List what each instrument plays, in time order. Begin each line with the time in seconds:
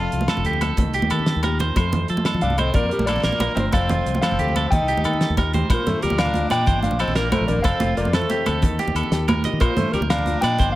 Already playing: nylon-string guitar F2 F3 A3 C4 A4, clean electric guitar F4 F5 A5, tenor saxophone F4
0.12 fingered electric bass C2, nylon-string guitar F3, closed hi-hat
0.21 muted conga, high conga
0.28 clean electric guitar A4, snare, closed hi-hat, low agogo
0.37 fingered electric bass F1, low conga
0.44 fingered electric bass D2, clean electric guitar G4, nylon-string guitar A4, muted nylon-string guitar stroke, closed hi-hat
0.53 high conga
0.61 nylon-string guitar C4, clean electric guitar A4, closed hi-hat, muted conga, low agogo
0.77 fingered electric bass D#2, nylon-string guitar D#3 C4, kick, closed hi-hat, high conga, low conga
0.86 fingered electric bass C2, muted nylon-string guitar stroke, low conga
0.94 clean electric guitar G4, nylon-string guitar G4, closed hi-hat, low conga
1.02 fingered electric bass D#2, muted conga, high conga
1.10 fingered electric bass D#3, nylon-string guitar A#3, clean electric guitar A4, closed hi-hat, low conga, low agogo
1.19 low conga
1.26 snare, closed hi-hat
1.35 fingered electric bass D#2, high conga, low conga
1.43 nylon-string guitar A#2 G4, clean electric guitar A#4, closed hi-hat, muted conga, low conga, low agogo
1.52 low conga
1.59 clean electric guitar C5, closed hi-hat, high conga, low conga
1.68 low conga
1.76 fingered electric bass F2, nylon-string guitar F2 F3 A3 C4 A4, clean electric guitar C5, kick, closed hi-hat, muted conga, low agogo
1.92 muted nylon-string guitar stroke, closed hi-hat, high conga, low conga
2.08 nylon-string guitar F3, fingered electric bass F3, clean electric guitar A4, closed hi-hat
2.17 muted conga, high conga
2.24 nylon-string guitar F2, clean electric guitar A4, snare, closed hi-hat, low agogo
2.34 fingered electric bass F3, low conga
2.41 fingered electric bass C2, nylon-string guitar G2, tenor saxophone D4, clean electric guitar D5 F5, closed hi-hat
2.50 high conga
2.57 nylon-string guitar A2, tenor saxophone C4, clean electric guitar C5 D#5, closed hi-hat, muted conga, low agogo
2.74 fingered electric bass A#1, nylon-string guitar A#2 A#3, tenor saxophone A#3, clean electric guitar A#4 D5, kick, closed hi-hat, high conga, low conga
2.83 fingered electric bass F2, low conga
2.89 tenor saxophone G3, nylon-string guitar D4, clean electric guitar G4 A#4, closed hi-hat, low conga
2.98 fingered electric bass A#1, muted conga, high conga
3.06 nylon-string guitar F3, tenor saxophone A#3, clean electric guitar A4 A#4 D5, closed hi-hat, low conga, low agogo
3.16 low conga
3.23 fingered electric bass A#1, clean electric guitar A#4, snare, closed hi-hat
3.32 high conga, low conga
3.39 fingered electric bass A#1, nylon-string guitar F4, clean electric guitar A#4, closed hi-hat, muted conga, low conga, low agogo
3.49 low conga
3.54 fingered electric bass G1, tenor saxophone C4, nylon-string guitar D4, clean electric guitar D#5, closed hi-hat, high conga, low conga
3.60 clean electric guitar C5
3.65 low conga
3.70 fingered electric bass F1, nylon-string guitar F2 A3, tenor saxophone C4, clean electric guitar A4 F5, kick, closed hi-hat, muted conga, low agogo
3.77 clean electric guitar C5
3.81 low conga
3.89 nylon-string guitar C4, clean electric guitar F4, closed hi-hat, high conga, low conga
3.98 low conga
4.06 fingered electric bass C2, nylon-string guitar F3, closed hi-hat, low conga
4.15 muted conga, high conga
4.21 tenor saxophone C4, clean electric guitar A4 C5 F5, snare, closed hi-hat, low conga, low agogo
4.31 fingered electric bass F1, low conga
4.39 fingered electric bass D2, nylon-string guitar C3 A4, clean electric guitar G4, closed hi-hat
4.48 high conga
4.56 nylon-string guitar C4, clean electric guitar A4, closed hi-hat, muted conga, low agogo
4.70 fingered electric bass D#2, nylon-string guitar D#3 D#4, tenor saxophone D#4, clean electric guitar D#5 G5, kick, closed hi-hat, high conga, low conga
4.81 fingered electric bass C2
4.88 clean electric guitar G4, nylon-string guitar G4, closed hi-hat, low conga
4.97 fingered electric bass D#2, muted conga, high conga
5.04 fingered electric bass D#3, nylon-string guitar A#3, clean electric guitar A4, closed hi-hat, low agogo
5.13 low conga
5.21 snare, closed hi-hat
5.30 fingered electric bass D#2, high conga, low conga
5.37 nylon-string guitar A#2 G4, clean electric guitar A#4, kick, closed hi-hat, muted conga, low agogo
5.53 nylon-string guitar G4, clean electric guitar C5, closed hi-hat, high conga, low conga
5.70 fingered electric bass A#1, nylon-string guitar A#2 F4, tenor saxophone F3, clean electric guitar F4 C5, kick, closed hi-hat, muted conga, low agogo
5.74 clean electric guitar A#4
5.79 low conga
5.86 fingered electric bass G2, tenor saxophone A3, nylon-string guitar D4, clean electric guitar A4 C5, closed hi-hat, high conga, low conga
6.02 fingered electric bass D2, nylon-string guitar F3 C4, tenor saxophone G3, clean electric guitar G4 A#4, closed hi-hat, low conga
6.10 fingered electric bass D2, muted conga
6.18 nylon-string guitar D4, tenor saxophone D4, clean electric guitar A#4 D5 F5, snare, closed hi-hat, low agogo
6.26 low conga
6.34 nylon-string guitar F2 F4, closed hi-hat, high conga
6.50 fingered electric bass A#2, tenor saxophone D4, clean electric guitar D5 D#5 G5, snare, closed hi-hat, muted conga, low agogo
6.67 fingered electric bass G1, nylon-string guitar A#2 F4, clean electric guitar C5, kick, closed hi-hat, low conga
6.83 nylon-string guitar D4, tenor saxophone D4, clean electric guitar D5 F5, closed hi-hat, high conga, low conga
6.91 fingered electric bass A#1, muted conga
6.99 nylon-string guitar F3 C4, tenor saxophone C4, clean electric guitar A4 C5 D#5, closed hi-hat, low conga, low agogo
7.07 fingered electric bass A#1, low conga
7.15 tenor saxophone A#3, nylon-string guitar D4, clean electric guitar A#4 D5, snare, closed hi-hat, low conga
7.32 nylon-string guitar F2 F4, tenor saxophone A3, clean electric guitar A4 A#4 C5, closed hi-hat, muted conga, high conga, low conga, low agogo
7.41 fingered electric bass A#1
7.48 fingered electric bass A#1, tenor saxophone A#3, nylon-string guitar D4, clean electric guitar A#4 D5, closed hi-hat, low conga
7.57 fingered electric bass G1, low conga
7.62 fingered electric bass F1, nylon-string guitar F2 A4, tenor saxophone C4, clean electric guitar A4 C5 F5, kick, closed hi-hat, muted conga, low agogo
7.72 low conga
7.80 fingered electric bass F1, nylon-string guitar C4, clean electric guitar F4, closed hi-hat, high conga, low conga
7.97 fingered electric bass F1, nylon-string guitar F3 A3, tenor saxophone A#3, clean electric guitar A#4 D5, closed hi-hat, low conga
8.05 fingered electric bass F2, muted conga
8.13 tenor saxophone A3, nylon-string guitar C4, clean electric guitar A4 C5, snare, closed hi-hat, low agogo
8.22 low conga
8.30 nylon-string guitar C3 A4, clean electric guitar G4, closed hi-hat, high conga
8.46 fingered electric bass D2, nylon-string guitar C4, clean electric guitar A4, closed hi-hat, muted conga, low agogo
8.62 fingered electric bass D#2, nylon-string guitar D#3, muted nylon-string guitar stroke, kick, closed hi-hat, low conga
8.79 clean electric guitar G4, nylon-string guitar G4, closed hi-hat, high conga, low conga
8.87 fingered electric bass D#2, muted conga
8.95 fingered electric bass D#2, nylon-string guitar A#3, clean electric guitar A4, muted nylon-string guitar stroke, closed hi-hat, low agogo
9.03 low conga
9.11 fingered electric bass D#2, nylon-string guitar G4, snare, closed hi-hat
9.28 nylon-string guitar A#2 G4, clean electric guitar A#4, closed hi-hat, muted conga, high conga, low conga, low agogo
9.44 nylon-string guitar G4, clean electric guitar D#5, closed hi-hat, low conga
9.53 fingered electric bass D#3, low conga
9.60 fingered electric bass A#1, nylon-string guitar A#2 F4, tenor saxophone F3, clean electric guitar F4 A#4 C5, kick, closed hi-hat, muted conga, low agogo
9.69 low conga
9.77 fingered electric bass G2, tenor saxophone A3, nylon-string guitar D4, clean electric guitar A4 C5, closed hi-hat, high conga, low conga
9.92 fingered electric bass D2, nylon-string guitar F3 C4, tenor saxophone G3, clean electric guitar G4 A#4, closed hi-hat, low conga
10.01 fingered electric bass D2, muted conga
10.10 tenor saxophone D4, clean electric guitar A#4 D5 F5, snare, closed hi-hat, low agogo
10.18 low conga
10.26 nylon-string guitar F4, closed hi-hat, high conga
10.41 fingered electric bass A#2, tenor saxophone D4, clean electric guitar D5 D#5 G5, snare, closed hi-hat, muted conga, low agogo
10.59 fingered electric bass G1, nylon-string guitar A#2 F4, clean electric guitar C5, kick, closed hi-hat, low conga
10.72 clean electric guitar F5